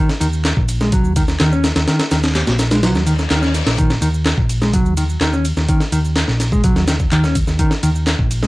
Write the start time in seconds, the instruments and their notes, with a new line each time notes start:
0.09 snare, ride, shaker
0.20 picked electric bass D#2, clean electric guitar D#3, closed hi-hat, ride, shaker
0.33 shaker
0.45 snare, clap, closed hi-hat, shaker
0.57 picked electric bass A#1, kick
0.69 closed hi-hat, ride, shaker
0.81 clean electric guitar G#3, snare, shaker
0.92 clean electric guitar F#3, kick, closed hi-hat, shaker
1.04 picked electric bass D#2, shaker
1.16 clean electric guitar D#3, kick, closed hi-hat, ride, shaker
1.28 snare, shaker
1.40 picked electric bass D#2, clean electric guitar D#3, snare, clap, closed hi-hat, shaker
1.52 clean electric guitar C#4, shaker
1.64 snare, closed hi-hat, ride, shaker
1.76 picked electric bass D#2, snare, closed hi-hat, shaker
1.88 clean electric guitar D#3, snare, closed hi-hat, shaker
1.99 snare, closed hi-hat, ride, shaker
2.11 picked electric bass D#2, clean electric guitar D#3, snare, closed hi-hat, ride, shaker
2.23 snare, closed hi-hat, shaker
2.35 snare, clap, closed hi-hat, shaker
2.47 picked electric bass A#1, snare, closed hi-hat, shaker
2.59 snare, closed hi-hat, ride, shaker
2.71 clean electric guitar G#3, snare, closed hi-hat, shaker
2.83 clean electric guitar F#3, snare, closed hi-hat, reverse cymbal, shaker
2.95 picked electric bass D#2, snare, shaker
3.06 clean electric guitar D#3, closed hi-hat, ride, shaker
3.19 snare, shaker
3.30 picked electric bass D#2, clean electric guitar D#3, snare, clap, closed hi-hat, shaker
3.42 clean electric guitar C#4, snare, shaker
3.54 snare, closed hi-hat, ride, shaker
3.66 picked electric bass A#1, snare, closed hi-hat, shaker
3.78 clean electric guitar D#3, kick, closed hi-hat, shaker
3.90 snare, ride, shaker
4.02 picked electric bass D#2, clean electric guitar D#3, closed hi-hat, ride, shaker
4.14 shaker
4.26 snare, clap, closed hi-hat, shaker
4.38 picked electric bass A#1, kick
4.49 closed hi-hat, ride, shaker
4.62 clean electric guitar G#3, snare, shaker
4.74 clean electric guitar F#3, kick, closed hi-hat, shaker
4.86 picked electric bass D#2, shaker
4.97 clean electric guitar D#3, closed hi-hat, ride, shaker
5.09 shaker
5.21 picked electric bass D#2, clean electric guitar D#3, snare, clap, closed hi-hat, shaker
5.33 clean electric guitar C#4, shaker
5.45 closed hi-hat, ride, shaker
5.57 picked electric bass D#2, snare, shaker
5.69 clean electric guitar D#3, kick, closed hi-hat, shaker
5.81 snare, ride, shaker
5.92 picked electric bass D#2, clean electric guitar D#3, closed hi-hat, ride, shaker
6.05 shaker
6.16 snare, clap, closed hi-hat, shaker
6.28 picked electric bass A#1, snare
6.40 snare, closed hi-hat, ride, shaker
6.52 clean electric guitar G#3, kick, shaker
6.64 clean electric guitar F#3, kick, closed hi-hat, shaker
6.76 picked electric bass D#2, snare, shaker
6.88 clean electric guitar D#3, snare, closed hi-hat, ride, shaker
7.00 kick, shaker
7.12 picked electric bass D#2, clean electric guitar D#3, clap, closed hi-hat, shaker
7.24 clean electric guitar C#4, snare, shaker
7.35 kick, closed hi-hat, ride, shaker
7.47 picked electric bass D#2, snare, shaker
7.59 clean electric guitar D#3, kick, closed hi-hat, shaker
7.71 snare, ride, shaker
7.83 picked electric bass D#2, clean electric guitar D#3, closed hi-hat, ride, shaker
7.95 shaker
8.07 snare, clap, closed hi-hat, shaker
8.19 picked electric bass A#1, kick
8.31 closed hi-hat, ride, shaker
8.43 clean electric guitar G#3, snare, shaker